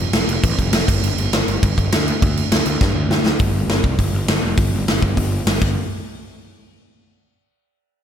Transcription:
0.13 F1, snare, crash
0.28 F1, crash
0.43 A1, kick, crash
0.59 F1, kick, crash
0.72 F1, snare, crash
0.88 G1, kick, crash
1.03 G1, crash
1.18 G1, crash
1.32 G1, snare, crash
1.48 G1, crash
1.63 G1, kick, crash
1.78 G1, kick, crash
1.92 D2, snare, crash
2.08 crash
2.22 D2, kick, crash
2.37 crash
2.52 D2, snare, crash
2.66 D2, crash
2.81 G2, kick, snare
2.95 D2
3.09 D2, snare
3.24 D2, snare
3.39 G1, kick, open hi-hat
3.53 G1
3.68 G1, snare, open hi-hat
3.84 C2, kick
3.99 G1, kick, open hi-hat
4.13 G1
4.28 G1, snare, open hi-hat
4.43 F1
4.57 G1, kick, open hi-hat
4.73 G1
4.87 G1, snare, open hi-hat
5.02 G1, kick
5.17 G1, kick, open hi-hat
5.47 G1, snare, open hi-hat
5.61 G1, kick, crash

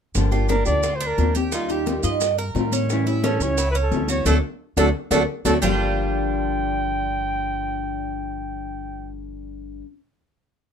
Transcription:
0.14 G1 D3 F3 A#3 D4 G4, high bongo, high conga, maracas
0.31 F3 A#3 D4 F4 G4, high conga, maracas
0.48 F3 A#3 D4 G4 A#4, high bongo, high conga, maracas
0.65 D2 F3 A#3 D4 G4 D5, high bongo, high conga, maracas
0.83 F4, muted nylon-string guitar stroke, high bongo, high conga, maracas
0.96 C5
1.00 D4, high bongo, high conga, maracas
1.07 A#4
1.17 D#2 F3 A#3 D4 G4, high bongo, low bongo, high conga, maracas
1.35 G4, high bongo, high conga, maracas
1.51 D#3 G3 D#4 F4, high bongo, high conga, maracas
1.68 G3 D#4 F4 G4, high conga, maracas
1.86 D#3 G3 D#4 F4, high bongo, high conga, maracas
2.03 G2 G3 D#4 F4 D#5, high bongo, high conga, maracas
2.21 muted nylon-string guitar stroke, high bongo, high conga, maracas
2.38 A#4, high bongo, high conga, maracas
2.55 A2 D#3 G3 D#4 F4, high bongo, low bongo, high conga, maracas
2.72 C#4, high bongo, high conga, maracas
2.89 E3 G3 C#4 E4, high bongo, high conga, maracas
3.07 G3 C#4 E4, high conga, maracas
3.24 E3 G3 C#4 E4 A4, high bongo, high conga, maracas
3.40 C#2 G3 C#4 E4 C#5, high bongo, high conga, maracas
3.58 E4, muted nylon-string guitar stroke, high bongo, high conga, maracas
3.71 C#4 B4, high bongo, high conga, maracas
3.83 A4
3.91 D2 E3 G3 C#4 E4, high bongo, low bongo, high conga, maracas
4.08 F#4 C#5, high bongo, high conga, maracas
4.25 D2 F#3 A3 D4 F#4 A4, high bongo, high conga, maracas
4.77 D2 F#3 A3 D4 F#4 A4, high bongo, high conga, maracas
5.11 D2 F#3 A3 D4 F#4 A4, high bongo, high conga, maracas
5.45 D2 F#3 A3 D4 F#4 A4, high bongo, high conga, maracas
5.61 G1 G2 D3 F3 G3 A#3 D4 F4 G4 G5, low bongo, low conga, maracas

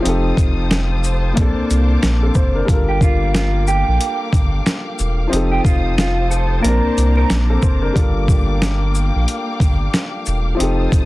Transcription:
Already playing: F5
0.00 F3 C4
0.04 F1 D#4 G4 C5 A5 D#6, closed hi-hat
0.09 A4
0.37 F1, kick, closed hi-hat, shaker
0.71 finger snap, snare, closed hi-hat
1.04 shaker
1.33 A#2 A#3 F5 D6, closed hi-hat
1.37 A#1 C4 D4, kick
1.41 A4
1.57 C2
1.70 C2, closed hi-hat, shaker
2.03 A#1, finger snap, snare, closed hi-hat
2.23 C4 A4
2.35 F#1 C5, kick, shaker
2.55 D4 A#4
2.65 G1 G3 A#3 D4 F5 G5 D6, kick
2.69 F4 A4, closed hi-hat
2.73 A#4
2.89 G4
3.01 F4, kick, shaker
3.34 F4, finger snap, snare, closed hi-hat
3.67 G4, shaker
3.88 A#1
4.01 closed hi-hat
4.33 G1, kick, closed hi-hat, shaker
4.66 finger snap, snare, closed hi-hat
4.99 E1, shaker
5.27 F3 C4
5.32 F1 D#4 G4 C5 A5 D#6, closed hi-hat
5.36 A4
5.52 G4
5.65 F1 F4, kick, shaker
5.98 F4, finger snap, snare, closed hi-hat
6.31 A4, shaker
6.60 A#2 A#3 A#4
6.64 A#1 C4 D4 A#5 D6, closed hi-hat
6.68 A#4
6.84 C2
6.97 C2, closed hi-hat, shaker
7.17 A#4
7.30 A#1, finger snap, snare, closed hi-hat
7.50 C4 A4
7.62 F#1 C5, kick, shaker
7.82 D4 A#4
7.92 G1 G3 A#3 D4 F5 G5, kick
7.96 F4 A4, closed hi-hat
8.00 A#4
8.28 kick, shaker
8.62 finger snap, snare, closed hi-hat
8.95 shaker
9.15 A#1
9.28 closed hi-hat
9.60 G1, kick, closed hi-hat, shaker
9.94 finger snap, snare, closed hi-hat
10.26 E1, shaker
10.55 F3 C4
10.59 F1 D#4 G4 C5 A5 D#6, closed hi-hat
10.63 A4
10.92 F1, kick, closed hi-hat, shaker

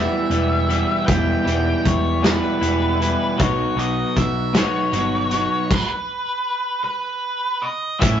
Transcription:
Already playing: E2 B2 E3 G3 B3 E4 E5
0.30 E1 E2 B2 E3 G3 B3 E4, closed hi-hat
0.67 E2 B2 E3 G3 B3 E4, closed hi-hat
1.06 E1 E2 B2 E3 G3 B3 E4 G5, kick, closed hi-hat
1.43 E1 E2 B2 E3 G3 B3 E4
1.47 closed hi-hat
1.85 E1 C#5, kick, closed hi-hat
2.21 E2 B2 E3 G3 B3 E4 B4, snare, closed hi-hat
2.59 E1 E2 B2 E3 G3 B3 E4, closed hi-hat
2.99 E2 B2 E3 G3 B3 E4, closed hi-hat
3.37 B1 B2 F#3 B3 D#4 F#4 C#5, kick, closed hi-hat
3.76 B1 B2 F#3 B3 D#4 F#4 D#5, closed hi-hat
4.16 B1 E5, kick, closed hi-hat
4.53 B2 F#3 B3 D#4 F#4 C#5, snare, closed hi-hat
4.91 G1 B2 F#3 B3 D#4 F#4, closed hi-hat
5.29 B2 F#3 B3 D#4 F#4, closed hi-hat
5.71 B4, kick, crash
6.84 B4
7.62 D#5
7.99 A1 A2 E3 B3 C#4 E4 E5, kick, closed hi-hat

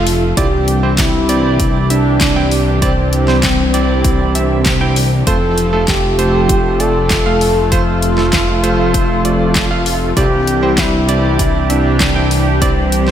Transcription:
Already playing: F1 C3 F3 A3 F4 A4
0.07 open hi-hat
0.37 C2 C3 E3 G3 C4 D4 E4 G4 D5, kick, closed hi-hat
0.68 closed hi-hat
0.83 C4 E4 C5
0.98 E4, kick, snare, clap, closed hi-hat
1.29 C4 E4 D5, closed hi-hat
1.60 kick, closed hi-hat
1.90 C4 D4 E4 E5, closed hi-hat
2.21 kick, snare, clap, closed hi-hat
2.36 C4 E4 G5
2.51 open hi-hat
2.82 C4 E4 D5, kick, closed hi-hat
3.13 closed hi-hat
3.28 C4 E4 C5, snare
3.43 kick, snare, clap, closed hi-hat
3.74 C4 E4 D5, closed hi-hat
4.05 kick, closed hi-hat
4.35 C4 E4 E5, closed hi-hat
4.66 kick, snare, clap, closed hi-hat
4.81 C4 E4 G5
4.96 open hi-hat
5.27 F1 F3 A3 F4 A4 C5, kick, closed hi-hat
5.58 closed hi-hat
5.73 A3 F4 A4
5.88 G4, kick, snare, clap, closed hi-hat
6.19 A3 F4 C5, closed hi-hat
6.49 kick, closed hi-hat
6.80 A3 F4 A4 D5, closed hi-hat
7.11 kick, snare, clap, closed hi-hat
7.26 A3 F4 F5
7.41 open hi-hat
7.72 A3 F4 C5, kick, closed hi-hat
8.02 closed hi-hat
8.18 A3 F4 A4, snare
8.33 kick, snare, clap, closed hi-hat
8.64 A3 F4 C5, closed hi-hat
8.94 kick, closed hi-hat
9.25 A3 F4 D5, closed hi-hat
9.55 kick, snare, clap, closed hi-hat
9.71 A3 F4 F5
9.86 open hi-hat
10.17 C2 E3 G3 C4 D4 E4 G4 D5, kick, closed hi-hat
10.47 closed hi-hat
10.63 C4 E4 C5
10.78 E4, kick, snare, clap, closed hi-hat
11.09 C4 E4 D5, closed hi-hat
11.39 kick, closed hi-hat
11.70 C4 D4 E4 E5, closed hi-hat
12.00 kick, snare, clap, closed hi-hat
12.16 C4 E4 G5
12.31 open hi-hat
12.62 C4 E4 D5, kick, closed hi-hat
12.92 closed hi-hat
13.08 C4 E4 C5, snare

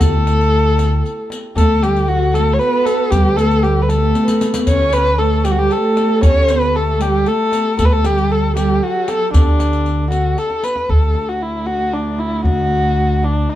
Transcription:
Already playing: E4 G4 B4
0.00 D2 A3 A4, riq, tombak dum
0.27 riq, tombak tek
0.41 riq
0.78 riq, tombak tek
1.06 riq
1.30 riq, tombak tek
1.56 D2 A3 A4, riq, tombak dum
1.82 G3 G4, riq, tombak tek
1.96 riq
2.08 F#3 F#4
2.34 A3 A4, riq, tombak tek
2.53 C#5
2.59 B3 B4, riq
2.67 B4
2.75 B4
2.81 B4
2.86 A4 B4, riq, tombak tek
2.96 B4
3.10 D2 G3 G4, riq, tombak dum
3.37 A3 A4, riq, tombak tek
3.51 riq
3.63 G3 G4, riq, tombak ka
3.82 B4
3.89 A3 A4, riq, tombak tek
4.15 riq, tombak tek
4.23 B4
4.28 riq, tombak ka
4.41 riq, tombak tek
4.54 riq, tombak ka
4.67 D2 C#4 C#5, riq, tombak dum
4.76 C#5
4.84 C#5
4.90 B4 C#5, riq, tombak tek
4.98 C#5
5.04 C#5, riq
5.18 A3 A4
5.45 G3 G4, riq, tombak tek
5.51 F#4
5.57 G3 G4
5.70 A3 A4, riq
5.77 A4
5.84 A4
5.93 A4
5.97 riq, tombak tek
6.02 A4
6.09 A4
6.16 D5
6.23 D2 C#4 C#5, riq, tombak dum
6.48 B3 B4, riq, tombak tek
6.61 riq
6.75 A3 A4
7.01 G3 G4, riq, tombak tek
7.26 A3 A4, riq
7.52 riq, tombak tek
7.78 D2 A3 A4, riq, tombak dum
7.85 B4
7.90 A3 A4
8.04 G3 G4, riq, tombak tek
8.18 riq
8.30 A4
8.55 G3 G4, riq, tombak tek
8.64 G4
8.71 G4
8.78 G4
8.83 F#3 F#4 G4
8.95 G4
9.08 A4, riq, tombak tek
9.34 D2 D3 D4, riq, tombak dum
9.60 riq, tombak tek
9.73 riq
9.86 riq
10.11 F#4, riq, tombak tek
10.37 A4, riq, tombak tek
10.50 tombak ka
10.63 B4, riq, tombak tek
10.76 tombak ka
10.88 D2 A4, tombak dum
11.15 tombak tek
11.29 F#4
11.41 E4, tombak ka
11.66 F#4, tombak tek
11.93 D4
12.19 E4, tombak tek
12.44 D2 F#4, tombak dum
12.71 tombak tek
13.23 D4, tombak tek
13.50 F#4

